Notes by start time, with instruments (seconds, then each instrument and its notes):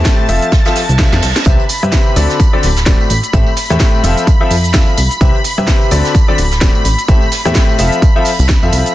Already playing: grand piano A2 C4 G4 A4 E5, analog synth pad A5
0.05 kick, snare, closed hi-hat, shaker
0.28 analog synth bass F1, grand piano F3 C4 F4 A4 E5, closed hi-hat, open hi-hat, shaker
0.42 closed hi-hat, shaker
0.51 kick, snare, closed hi-hat, reverse cymbal, shaker
0.65 grand piano F3 C4 F4 A4 E5, snare, closed hi-hat
0.75 snare, closed hi-hat, open hi-hat, shaker
0.89 analog synth bass C2, closed hi-hat, shaker
0.98 grand piano F3 C4 F4 A4 E5, kick, snare, closed hi-hat, shaker
1.13 analog synth bass F2, snare
1.22 analog synth bass C2, snare, closed hi-hat, open hi-hat, shaker
1.36 snare, closed hi-hat, shaker
1.46 analog synth bass C2, grand piano C3 C4 G4 B4 E5, analog synth pad B5, kick, closed hi-hat, tambourine, shaker
1.59 closed hi-hat
1.69 closed hi-hat, open hi-hat, tambourine, shaker
1.82 analog synth bass G2, grand piano C3 C4 G4 B4 E5, cross-stick, closed hi-hat, tambourine, shaker
1.92 kick, snare, closed hi-hat, tambourine, shaker
2.07 tambourine
2.16 analog synth bass D2, grand piano D3 C4 F#4 A4 D5, closed hi-hat, open hi-hat, tambourine, shaker
2.30 snare, closed hi-hat, tambourine, shaker
2.40 kick, closed hi-hat, tambourine, shaker
2.53 grand piano D3 C4 F#4 A4 D5
2.63 analog synth bass D1, closed hi-hat, open hi-hat, tambourine, shaker
2.76 snare, closed hi-hat, tambourine, shaker
2.86 grand piano A2 C4 F#4 A4 D5, kick, snare, closed hi-hat, tambourine, shaker
3.01 tambourine
3.10 analog synth bass A1, closed hi-hat, open hi-hat, tambourine, shaker
3.23 closed hi-hat, tambourine, shaker
3.33 analog synth bass A1, grand piano A2 C4 G4 A4 E5, kick, closed hi-hat, tambourine, shaker
3.46 tambourine
3.56 snare, closed hi-hat, open hi-hat, tambourine, shaker
3.70 analog synth bass E2, grand piano A2 C4 G4 A4 E5, cross-stick, snare, closed hi-hat, tambourine, shaker
3.80 kick, snare, closed hi-hat, tambourine, shaker
3.95 tambourine
4.04 analog synth bass F1, grand piano F3 C4 F4 A4 E5, closed hi-hat, open hi-hat, tambourine, shaker
4.17 closed hi-hat, tambourine, shaker
4.27 kick, closed hi-hat, tambourine, shaker
4.41 grand piano F3 C4 F4 A4 E5
4.51 analog synth bass F2, open hi-hat, tambourine, shaker
4.64 closed hi-hat, tambourine, shaker
4.74 grand piano F3 C4 F4 A4 E5, kick, snare, closed hi-hat, tambourine, shaker
4.87 tambourine
4.97 analog synth bass C2, closed hi-hat, open hi-hat, tambourine, shaker
5.11 closed hi-hat, tambourine, shaker
5.21 analog synth bass C2, grand piano C3 C4 G4 B4 E5, kick, closed hi-hat, tambourine, shaker
5.34 closed hi-hat
5.44 closed hi-hat, open hi-hat, tambourine, shaker
5.58 analog synth bass G2, grand piano C3 C4 G4 B4 E5, cross-stick, closed hi-hat, tambourine, shaker
5.67 kick, snare, closed hi-hat, tambourine, shaker
5.81 tambourine
5.91 analog synth bass D2, grand piano D3 C4 F#4 A4 D5, closed hi-hat, open hi-hat, tambourine, shaker
6.05 snare, closed hi-hat, tambourine, shaker
6.15 kick, closed hi-hat, tambourine, shaker
6.28 grand piano D3 C4 F#4 A4 D5
6.38 analog synth bass D1, closed hi-hat, open hi-hat, tambourine, shaker
6.51 snare, closed hi-hat, tambourine, shaker
6.61 grand piano A2 C4 F#4 A4 D5, kick, snare, closed hi-hat, tambourine, shaker
6.75 tambourine
6.85 analog synth bass A1, closed hi-hat, open hi-hat, tambourine, shaker
6.99 closed hi-hat, tambourine, shaker
7.08 analog synth bass A1, grand piano A2 C4 G4 A4 E5, kick, closed hi-hat, tambourine, shaker
7.22 tambourine
7.32 snare, closed hi-hat, open hi-hat, tambourine, shaker
7.45 analog synth bass E2, grand piano A2 C4 G4 A4 E5, cross-stick, snare, closed hi-hat, tambourine, shaker
7.55 kick, snare, closed hi-hat, tambourine, shaker
7.69 tambourine
7.78 analog synth bass F1, grand piano F3 C4 F4 A4 E5, closed hi-hat, open hi-hat, tambourine, shaker
7.92 closed hi-hat, tambourine, shaker
8.02 kick, closed hi-hat, tambourine, shaker
8.16 grand piano F3 C4 F4 A4 E5
8.25 open hi-hat, tambourine, shaker
8.39 analog synth bass C2, closed hi-hat, tambourine, shaker
8.49 kick, snare, closed hi-hat, tambourine, shaker
8.63 analog synth bass F2, grand piano F3 C4 F4 A4 E5, tambourine
8.73 analog synth bass C2, closed hi-hat, open hi-hat, tambourine, shaker
8.86 closed hi-hat, tambourine, shaker